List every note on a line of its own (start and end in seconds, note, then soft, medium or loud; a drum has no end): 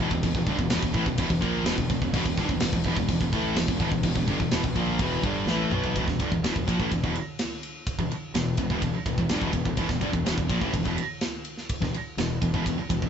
0.01 0.11 E2 medium
0.01 0.12 B2 loud
0.10 0.22 E1 medium
0.10 kick medium
0.14 0.24 E2 medium
0.14 0.24 B2 medium
0.23 0.34 E1 medium
0.23 0.36 E2 medium
0.23 0.36 B2 medium
0.23 kick medium
0.23 crash medium
0.34 0.46 E1 medium
0.34 0.48 E2 medium
0.34 0.48 B2 medium
0.34 kick medium
0.46 0.57 G1 medium
0.46 0.59 G2 loud
0.46 0.59 D3 loud
0.46 kick medium
0.46 crash medium
0.58 0.69 E1 medium
0.58 0.71 E2 medium
0.58 0.72 B2 medium
0.58 kick medium
0.70 0.82 E1 loud
0.70 0.83 E2 medium
0.70 0.83 B2 loud
0.70 snare loud
0.70 crash medium
0.83 0.94 E1 medium
0.83 0.95 E2 medium
0.83 0.95 B2 medium
0.83 kick loud
0.94 1.05 A1 loud
0.94 1.06 A2 loud
0.94 1.07 E3 loud
0.94 kick medium
0.94 crash medium
1.06 1.17 E1 medium
1.06 1.18 E2 medium
1.06 1.19 B2 medium
1.06 kick loud
1.18 1.29 E1 loud
1.18 1.30 E2 loud
1.18 1.29 B2 loud
1.18 kick loud
1.18 crash medium
1.30 1.41 E1 medium
1.30 1.42 E2 medium
1.30 1.40 B2 medium
1.30 kick medium
1.41 1.63 A#1 medium
1.41 1.65 A#2 loud
1.41 1.65 F3 loud
1.41 1.66 A#3 loud
1.41 kick medium
1.41 crash medium
1.64 1.76 E1 loud
1.64 1.76 E2 loud
1.64 1.77 B2 loud
1.64 snare loud
1.64 crash medium
1.78 1.89 E1 medium
1.78 1.90 E2 medium
1.78 1.90 B2 medium
1.78 kick medium
1.89 2.01 E1 medium
1.89 2.02 E2 medium
1.89 2.02 B2 medium
1.89 kick medium
1.89 crash medium
2.01 2.12 E1 medium
2.01 2.13 E2 medium
2.01 2.14 B2 medium
2.01 kick medium
2.13 2.24 E1 loud
2.13 2.25 E2 loud
2.13 2.26 B2 loud
2.13 kick loud
2.13 crash medium
2.25 2.36 E1 medium
2.25 2.38 E2 medium
2.25 2.38 B2 medium
2.25 kick medium
2.37 2.48 G1 loud
2.37 2.49 G2 medium
2.37 2.50 D3 loud
2.37 kick medium
2.37 crash medium
2.49 2.60 E1 medium
2.49 2.62 E2 medium
2.49 2.63 B2 medium
2.49 kick medium
2.60 2.72 E1 medium
2.60 2.74 E2 medium
2.60 2.75 B2 medium
2.60 snare loud
2.60 crash loud
2.73 2.84 E1 medium
2.73 2.85 E2 medium
2.73 2.86 B2 medium
2.73 kick loud
2.84 2.95 E1 loud
2.84 2.97 E2 loud
2.84 2.98 B2 loud
2.84 kick medium
2.84 crash medium
2.96 3.08 E1 medium
2.96 3.09 E2 medium
2.96 3.10 B2 medium
2.96 kick medium
3.08 3.20 E1 medium
3.08 3.22 E2 medium
3.08 3.22 B2 medium
3.08 kick loud
3.08 crash loud
3.20 3.32 E1 medium
3.20 3.34 E2 medium
3.20 3.33 B2 medium
3.20 kick medium
3.33 3.54 A1 medium
3.33 3.56 A2 loud
3.33 3.57 E3 loud
3.33 3.57 A3 loud
3.33 kick medium
3.33 crash medium
3.55 3.67 E1 medium
3.55 3.69 E2 medium
3.55 3.69 B2 medium
3.55 snare loud
3.55 crash loud
3.68 3.79 E1 medium
3.68 3.79 E2 medium
3.68 3.79 B2 medium
3.68 kick medium
3.79 3.91 E1 loud
3.79 3.91 E2 loud
3.79 3.92 B2 loud
3.79 kick medium
3.79 crash medium
3.91 4.03 E1 medium
3.91 4.04 E2 medium
3.91 4.05 B2 medium
3.91 kick medium
4.03 4.15 E1 medium
4.03 4.16 E2 medium
4.03 4.17 B2 medium
4.03 kick loud
4.03 crash medium
4.15 4.27 E1 medium
4.15 4.29 E2 medium
4.15 4.29 B2 medium
4.15 kick medium
4.27 4.39 G1 loud
4.27 4.40 G2 loud
4.27 4.40 D3 loud
4.27 kick medium
4.27 crash medium
4.40 4.50 E1 medium
4.40 4.52 E2 medium
4.40 4.52 B2 medium
4.40 kick medium
4.50 4.62 E1 loud
4.50 4.63 E2 medium
4.50 4.64 B2 loud
4.50 snare loud
4.50 crash medium
4.64 4.75 E1 medium
4.64 4.76 E2 medium
4.64 4.75 B2 medium
4.64 kick loud
4.75 4.98 A#1 loud
4.75 4.99 A#2 loud
4.75 4.99 F3 medium
4.75 4.99 A#3 loud
4.75 kick medium
4.75 crash medium
4.99 5.22 E1 loud
4.99 5.23 E2 loud
4.99 5.23 B2 loud
4.99 5.24 E3 loud
4.99 kick loud
4.99 crash medium
5.23 5.45 G1 medium
5.23 5.46 G2 loud
5.23 5.47 D3 loud
5.23 5.47 G3 loud
5.23 kick loud
5.23 crash medium
5.46 5.69 A1 loud
5.46 5.71 A2 medium
5.46 5.71 E3 medium
5.46 snare medium
5.50 5.72 A3 loud
5.70 5.93 B1 loud
5.70 5.95 B2 medium
5.70 5.95 F#3 loud
5.70 5.95 B3 loud
5.70 mid tom loud
5.84 floor tom loud
5.96 6.07 E1 medium
5.96 6.06 E2 medium
5.96 6.06 B2 loud
5.96 kick loud
5.96 ride loud
6.08 6.18 E1 medium
6.08 6.19 E2 medium
6.08 6.19 B2 medium
6.08 kick medium
6.08 snare soft
6.19 6.30 G1 loud
6.19 6.30 G2 medium
6.19 6.31 D3 loud
6.19 kick medium
6.19 ride medium
6.32 6.41 E1 medium
6.32 6.43 E2 medium
6.32 6.44 B2 medium
6.32 kick medium
6.42 6.54 E1 medium
6.42 6.55 E2 medium
6.42 6.55 B2 loud
6.42 snare loud
6.42 ride loud
6.55 6.66 E1 medium
6.55 6.67 E2 medium
6.55 6.66 B2 medium
6.55 kick medium
6.67 6.78 A#1 medium
6.67 6.78 A#2 loud
6.67 6.79 F3 loud
6.67 kick medium
6.67 ride medium
6.79 6.90 A1 loud
6.79 6.90 A2 medium
6.79 6.91 E3 medium
6.79 kick medium
6.91 7.02 E1 medium
6.91 7.02 E2 medium
6.91 7.03 B2 medium
6.91 kick loud
6.91 ride loud
7.03 7.14 E1 loud
7.03 7.14 E2 medium
7.03 7.15 B2 loud
7.03 kick medium
7.15 ride medium
7.39 snare loud
7.39 ride loud
7.63 ride medium
7.87 kick loud
7.87 ride loud
7.98 8.09 E1 medium
7.98 8.11 E2 medium
7.98 8.11 B2 medium
7.98 kick medium
8.10 muted fingered electric bass stroke soft
8.10 muted distorted electric guitar stroke medium
8.10 ride medium
8.34 8.57 E1 medium
8.34 8.54 E2 medium
8.34 8.54 B2 medium
8.34 snare loud
8.34 ride loud
8.57 8.69 E1 medium
8.57 8.70 E2 medium
8.57 8.71 B2 medium
8.57 kick medium
8.57 ride medium
8.70 8.81 E1 medium
8.70 8.82 E2 medium
8.70 8.82 B2 loud
8.70 kick medium
8.82 8.93 E1 medium
8.82 8.95 E2 medium
8.82 8.95 B2 medium
8.82 kick loud
8.82 ride loud
8.95 muted fingered electric bass stroke soft
8.95 muted distorted electric guitar stroke medium
9.05 9.17 E1 medium
9.05 9.18 E2 medium
9.05 9.18 B2 medium
9.05 kick medium
9.05 ride medium
9.17 9.29 E1 medium
9.17 9.30 E2 medium
9.17 9.31 B2 medium
9.17 kick medium
9.29 9.41 G1 loud
9.29 9.42 G2 medium
9.29 9.42 D3 loud
9.29 snare loud
9.29 ride loud
9.41 9.53 E1 loud
9.41 9.52 E2 loud
9.41 9.52 B2 loud
9.41 kick loud
9.53 9.65 E1 medium
9.53 9.64 E2 medium
9.53 9.64 B2 medium
9.53 kick medium
9.53 ride medium
9.65 9.77 E1 medium
9.65 9.76 E2 medium
9.65 9.77 B2 medium
9.65 kick medium
9.77 9.88 E1 medium
9.77 9.88 E2 medium
9.77 9.89 B2 loud
9.77 kick loud
9.77 ride loud
9.89 10.01 E1 medium
9.89 10.01 E2 medium
9.89 10.02 B2 medium
9.89 kick medium
9.89 snare soft
10.01 10.13 G1 loud
10.01 10.12 G2 loud
10.01 10.13 D3 loud
10.01 kick medium
10.01 ride medium
10.13 10.25 E1 medium
10.13 10.24 E2 medium
10.13 10.25 B2 medium
10.13 kick medium
10.25 10.37 E1 loud
10.25 10.36 E2 medium
10.25 10.36 B2 loud
10.25 snare loud
10.25 ride loud
10.37 10.49 E1 medium
10.37 10.49 E2 medium
10.37 10.48 B2 medium
10.37 kick medium
10.48 10.60 A#1 loud
10.48 10.59 A#2 loud
10.48 10.61 F3 loud
10.48 kick medium
10.48 ride medium
10.60 10.73 A1 medium
10.60 10.71 A2 medium
10.60 10.73 E3 loud
10.60 kick medium
10.72 10.85 E1 medium
10.72 10.82 E2 medium
10.72 10.83 B2 medium
10.72 kick loud
10.72 ride loud
10.83 10.97 E1 loud
10.83 10.96 E2 medium
10.83 10.96 B2 loud
10.83 kick medium
10.98 ride medium
11.21 snare loud
11.21 ride loud
11.45 ride medium
11.57 snare soft
11.69 kick loud
11.69 ride loud
11.81 11.93 E1 medium
11.81 11.92 E2 medium
11.81 11.93 B2 medium
11.81 kick medium
11.81 snare soft
11.93 muted distorted electric guitar stroke medium
11.93 muted fingered electric bass stroke soft
11.93 ride medium
12.17 12.40 E1 medium
12.17 12.37 E2 medium
12.17 12.37 B2 medium
12.17 snare loud
12.17 ride loud
12.42 12.53 E1 medium
12.42 12.52 E2 medium
12.42 12.53 B2 medium
12.42 kick medium
12.42 ride medium
12.53 12.64 E1 loud
12.53 12.65 E2 medium
12.53 12.65 B2 loud
12.53 kick medium
12.66 12.75 E1 medium
12.66 12.77 E2 medium
12.66 12.78 B2 medium
12.66 kick loud
12.66 ride loud
12.75 muted fingered electric bass stroke soft
12.75 muted distorted electric guitar stroke medium
12.90 13.01 E1 medium
12.90 13.01 E2 medium
12.90 13.01 B2 medium
12.90 kick medium
12.90 ride medium
13.02 13.09 E1 medium
13.02 13.09 E2 medium
13.02 13.09 B2 medium
13.02 kick medium